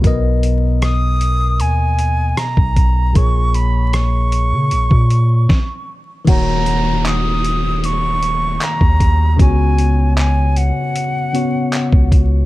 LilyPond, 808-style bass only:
\new Staff \with { instrumentName = "808-style bass" } { \clef bass \time 4/4 \key ees \minor \tempo 4 = 77 b,,2 dis,4 r16 b,,16 b,,8 | bes,,4.~ bes,,16 des16 bes,,16 bes,8. r4 | ees,,2. r16 ees,16 ees,8 | des,4.~ des,16 r4. des,16 des,8 | }